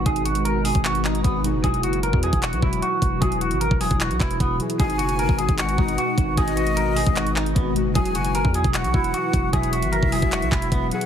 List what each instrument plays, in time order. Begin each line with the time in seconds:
Already playing: synth keys B2 G#3 D#4 F#4, ambient pad G#3 D#4 F#4 B4
0.04 808-style bass G#1, synth keys B2 G#3 D#4, clean electric guitar G#4, kick, closed hi-hat
0.08 synth keys F#4
0.16 closed hi-hat
0.25 clean electric guitar F#4, closed hi-hat
0.35 closed hi-hat
0.45 clean electric guitar A#4, closed hi-hat
0.63 synth keys B2 G#3 D#4, clean electric guitar G#4, open hi-hat
0.67 synth keys F#4
0.75 808-style bass G#1, kick, closed hi-hat
0.85 clean electric guitar F#4, clap, closed hi-hat
0.95 closed hi-hat
1.04 clean electric guitar D#4, clap
1.15 closed hi-hat
1.23 808-style bass G#1, clean electric guitar B3, kick, closed hi-hat
1.42 synth keys B2 G#3 D#4, closed hi-hat
1.46 synth keys F#4
1.54 808-style bass F#1
1.62 808-style bass E1, synth keys B2 F#3 E4, ambient pad E3 E4, clean electric guitar G#4, kick, closed hi-hat
1.66 synth keys F#4
1.74 closed hi-hat
1.83 808-style bass F#1, clean electric guitar F#4, closed hi-hat
1.93 closed hi-hat
2.03 clean electric guitar A#4, closed hi-hat
2.13 808-style bass E2, kick
2.21 synth keys B2 F#3 E4, clean electric guitar G#4, closed hi-hat
2.25 synth keys F#4
2.33 808-style bass E1, kick, closed hi-hat
2.42 clean electric guitar F#4, clap, closed hi-hat
2.53 808-style bass B1, closed hi-hat
2.60 808-style bass E1, synth keys B2 F#3 E4, clean electric guitar E4, kick
2.65 synth keys F#4
2.73 closed hi-hat
2.82 clean electric guitar F#4, closed hi-hat
3.02 808-style bass E1, kick, closed hi-hat
3.20 808-style bass E1, synth keys B2 F#3 E4, clean electric guitar G#4, kick, closed hi-hat
3.24 synth keys F#4
3.32 closed hi-hat
3.41 clean electric guitar F#4, closed hi-hat
3.51 808-style bass G#1, closed hi-hat
3.61 clean electric guitar A#4, closed hi-hat
3.71 808-style bass E1, kick
3.79 synth keys B2 F#3 E4, clean electric guitar G#4, open hi-hat
3.83 synth keys F#4
3.91 808-style bass E1, kick, closed hi-hat
4.00 clean electric guitar F#4, clap, closed hi-hat
4.10 808-style bass B1, closed hi-hat
4.20 808-style bass E1, clean electric guitar E4, kick, clap
4.31 closed hi-hat
4.40 808-style bass E1, clean electric guitar B3, kick, closed hi-hat
4.58 synth keys B2 F#3 E4, closed hi-hat
4.62 synth keys G#4
4.70 closed hi-hat
4.77 808-style bass G#1, synth keys B2 G#3 D#4, ambient pad G#3 D#4 F#4, clean electric guitar G#4, flute G#5, kick, closed hi-hat
4.82 synth keys F#4
4.90 closed hi-hat
4.98 808-style bass F#1, clean electric guitar F#4, closed hi-hat
5.09 closed hi-hat
5.19 clean electric guitar A#4, closed hi-hat
5.29 808-style bass G#1, kick
5.37 synth keys B2 G#3 D#4, clean electric guitar G#4, closed hi-hat
5.41 synth keys F#4
5.49 808-style bass G#1, kick, closed hi-hat
5.58 clean electric guitar F#4, flute F#5, clap, closed hi-hat
5.69 closed hi-hat
5.76 808-style bass G#1, synth keys B2 G#3 D#4, clean electric guitar D#4, kick
5.80 synth keys F#4
5.88 closed hi-hat
5.98 clean electric guitar F#4, closed hi-hat
6.18 808-style bass G#1, kick, closed hi-hat
6.35 808-style bass G#1, synth keys B2 G#3 D#4, clean electric guitar G#4, flute D#5, kick, closed hi-hat
6.40 synth keys F#4
6.48 closed hi-hat
6.57 clean electric guitar F#4, closed hi-hat
6.67 closed hi-hat
6.77 clean electric guitar A#4, closed hi-hat
6.95 synth keys B2 G#3 D#4, clean electric guitar G#4, open hi-hat
6.99 synth keys F#4
7.06 808-style bass G#1, kick, closed hi-hat
7.16 clean electric guitar F#4, clap, closed hi-hat
7.27 closed hi-hat
7.36 clean electric guitar D#4, clap
7.46 closed hi-hat
7.55 808-style bass G#1, clean electric guitar B3, kick, closed hi-hat
7.74 synth keys B2 G#3 D#4, closed hi-hat
7.78 synth keys F#4
7.85 808-style bass F#1
7.93 808-style bass E1, synth keys B2 F#3 E4, ambient pad E3 E4 B4, clean electric guitar G#4, flute G#5, kick, closed hi-hat
7.97 synth keys F#4
8.06 closed hi-hat
8.15 808-style bass F#1, clean electric guitar F#4, closed hi-hat
8.25 closed hi-hat
8.35 clean electric guitar A#4, closed hi-hat
8.45 808-style bass E2, kick
8.52 synth keys B2 F#3 E4, clean electric guitar G#4, closed hi-hat
8.57 synth keys F#4
8.64 808-style bass E1, kick, closed hi-hat
8.74 clean electric guitar F#4, flute F#5, clap, closed hi-hat
8.84 808-style bass B1, closed hi-hat
8.92 808-style bass E1, synth keys B2 F#3 E4, clean electric guitar E4, kick
8.96 synth keys F#4
9.04 closed hi-hat
9.14 clean electric guitar F#4, closed hi-hat
9.33 808-style bass E1, kick, closed hi-hat
9.51 808-style bass E1, synth keys B2 F#3 E4, clean electric guitar G#4, flute E5, kick, closed hi-hat
9.55 synth keys F#4
9.63 closed hi-hat
9.73 clean electric guitar F#4, closed hi-hat
9.82 808-style bass G#1, closed hi-hat
9.92 clean electric guitar A#4, closed hi-hat
10.03 808-style bass E1, kick
10.10 synth keys B2 F#3 E4, clean electric guitar G#4, open hi-hat
10.15 synth keys F#4
10.22 808-style bass E1, kick, closed hi-hat
10.32 clean electric guitar F#4, clap, closed hi-hat
10.42 808-style bass B1, closed hi-hat
10.51 808-style bass E1, clean electric guitar E4, kick, clap
10.62 closed hi-hat
10.72 808-style bass E1, clean electric guitar B3, kick, closed hi-hat
10.89 synth keys B2 F#3 E4, flute F#5, closed hi-hat
10.94 synth keys G#4
11.01 closed hi-hat